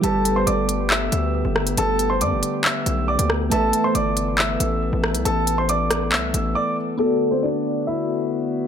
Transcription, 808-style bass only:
\new Staff \with { instrumentName = "808-style bass" } { \clef bass \time 4/4 \key g \lydian \tempo 4 = 138 g,,4 g,,4. d,8. g,,8. | g,,4 g,16 g,,16 r4 b,,8. d,8. | a,,8 r8 g,,4. a,,8. a,,8 c,16 | a,,2 c,8 a,,8 r4 |
r1 | }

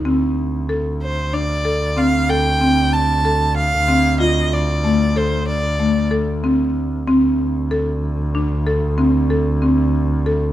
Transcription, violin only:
\new Staff \with { instrumentName = "Violin" } { \time 11/8 \key d \minor \tempo 4 = 94 r4. c''8 d''4 f''8 g''4 a''4 | f''4 ees''8 d''4 c''8 d''4 r4. | r1 r4. | }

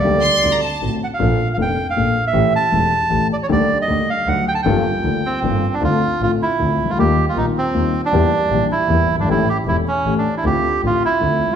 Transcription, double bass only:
\new Staff \with { instrumentName = "Double bass" } { \clef bass \time 3/4 \key g \minor \tempo 4 = 156 d,8 r8 d,8 r8 a,,8 r8 | bes,,8 r8 f,,8 r8 bes,,8 r8 | a,,8 r8 e,,8 r8 a,,8 r8 | d,8 r8 d,8 r8 d,8 r8 |
g,,8 r8 d,8 r8 g,,8 r8 | \key d \minor d,8 r8 a,,8 r8 d,8 cis,8 | ees,8 r8 bes,,8 r8 ees,8 r8 | e,8 r8 bes,,8 r8 e,8 g,,8 |
a,,8 r8 e,,8 r8 a,,8 r8 | d,8 r8 a,,8 r8 d,8 d,8 | }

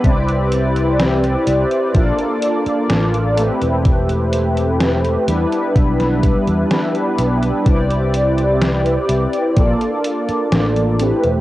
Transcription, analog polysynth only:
\new Staff \with { instrumentName = "Analog polysynth" } { \time 4/4 \key c \major \tempo 4 = 63 <c' e' g' b' d''>2 <bes d' f' a' d''>4. <a c' e' g' b'>8~ | <a c' e' g' b'>4. <g b d' e' b'>2~ <g b d' e' b'>8 | <c' e' g' b' d''>2 <bes d' f' a' d''>4. <a c' e' g' b'>8 | }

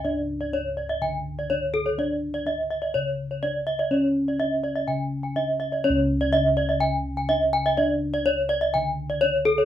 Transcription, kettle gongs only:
<<
  \new Staff \with { instrumentName = "Kettle gongs" } { \time 4/4 \tempo 4 = 124 << { d'2. r4 | d'2. r4 | cis'2. r4 | cis'2. r4 |
d'2. r4 | } \\ { r4 d'8 r4. d'8 r8 | r4 d'8 r4. d'8 r8 | r2. d'8 r8 | r4 d'8 r4. d'8 r8 |
r4 d'8 r4. d'8 r8 | } >> }
  \new Staff \with { instrumentName = "Kettle gongs" } { \clef bass \time 4/4 << { r2 d2~ | d4 r4 cis2~ | cis4 r4 cis2~ | cis4 r2. |
r2 d2 | } \\ { cis,2 r2 | r1 | r1 | cis,1~ |
cis,2 r2 | } >> }
>>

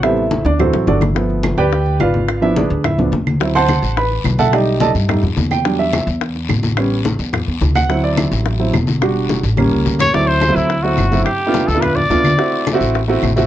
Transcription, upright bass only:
\new Staff \with { instrumentName = "Upright bass" } { \clef bass \time 4/4 \key d \mixolydian \tempo 4 = 214 a,,4. d,4 a,,8 g,,4~ | g,,4. d,4. gis,,4~ | gis,,4. d,4 cis,8 d,4~ | d,4. a,,4. b,,4~ |
b,,4. g,4 f,8 e,4~ | e,4. e,4. a,,4~ | a,,4. e,4 e,8 d,4~ | d,4. a,,4. e,,4~ |
e,,4. a,,4 cis,8 d,4 | d,4. d,4. g,,4 | r4. d,4. d,4 | r4. a,,4. a,,4 | }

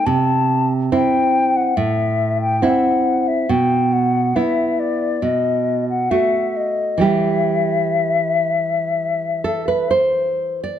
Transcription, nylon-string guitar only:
\new Staff \with { instrumentName = "Nylon-string guitar" } { \time 4/4 \key e \minor \tempo 4 = 69 << { r1 | r1 | r2 r8 a'16 b'16 c''8. d''16 | } \\ { c4 <c' e'>4 a,4 <c' e'>4 | b,4 <b e'>4 b,4 <a fis'>4 | <e g g'>1 | } >> }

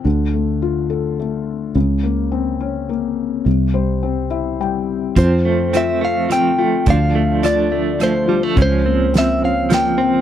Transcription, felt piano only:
\new Staff \with { instrumentName = "Felt piano" } { \time 3/4 \key f \major \tempo 4 = 106 << { r2. | r2. | r8 c''4 e''8 g''4 | r2. |
r2. | r2. | } \\ { d8 a8 f'8 a'8 a4 | des8 bes8 c'8 des'8 bes4 | c8 g8 c'8 e'8 g4 | f8 c'8 f'8 a'8 c'8 f'8 |
d8 a8 f'8 a'8 a8 f'8 | des8 bes8 c'8 des'8 bes8 c'8 | } >> }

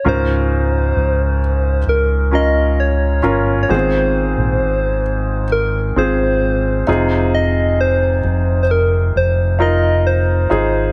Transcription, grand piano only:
<<
  \new Staff \with { instrumentName = "Grand piano" } { \time 4/4 \key des \lydian \tempo 4 = 66 <des' f' bes'>2 r8 <des' f' bes'>4 <des' f' bes'>8 | <ces' c' f' aes'>2 r8 <c' f' aes'>4 <ees' f' aes'>8~ | <ees' f' aes'>4. r4 <ees' f' bes'>4 <ees' f' aes'>8 | }
  \new Staff \with { instrumentName = "Grand piano" } { \clef bass \time 4/4 \key des \lydian aes,4. r2 r8 | <aes, ees>4. r2 c8~ | c4 r2. | }
>>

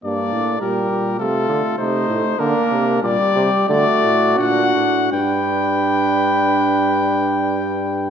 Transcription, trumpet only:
\new Staff \with { instrumentName = "Trumpet" } { \time 4/4 \key g \minor \tempo 4 = 89 d''4 bes'4 a'4 c''4 | bes'4 d''4 d''4 fis''4 | g''1 | }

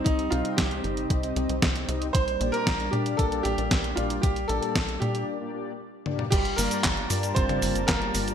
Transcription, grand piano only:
\new Staff \with { instrumentName = "Grand piano" } { \time 4/4 \key g \minor \tempo 4 = 115 ees'8 f'8 g'2~ g'8 r8 | c''8. bes'8. g'8 a'8 g'4 f'8 | g'8 a'4 g'8 r2 | <g g'>8 <bes bes'>4. <c' c''>4 <bes bes'>4 | }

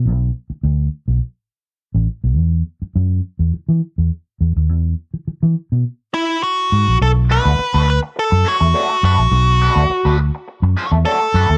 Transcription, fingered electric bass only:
\new Staff \with { instrumentName = "Fingered electric bass" } { \clef bass \time 4/4 \key b \minor \tempo 4 = 104 b,,8 r8 d,8 r16 b,,16 r4 r16 a,,16 r16 b,,16 | e,8 r8 fis,8 r16 e,16 r16 e16 r16 e,16 r8 e,16 dis,16 | e,8 r8. e16 r16 b,16 r4. gis,16 ais,,16 | b,,8. d,16 r16 d,8 r8 fis,16 r16 e,16 r8 fis,16 ais,,16 |
b,,8. d,16 r16 d,8 r8 fis,16 r16 e,16 r8 fis,16 dis,16 | }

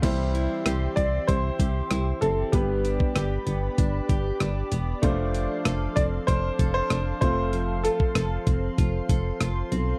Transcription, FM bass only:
\new Staff \with { instrumentName = "FM bass" } { \clef bass \time 4/4 \key c \major \tempo 4 = 96 c,4 c,8 c,8 c,8 c,8 c,8 fis,,8 | g,,4 g,,8 g,,8 g,,8 g,,8 g,,8 e,,8 | f,,4 f,,8 f,,8 f,,8 f,,8 f,,8 f,,8~ | f,,4 f,,8 f,,8 f,,8 f,,8 f,,8 b,,8 | }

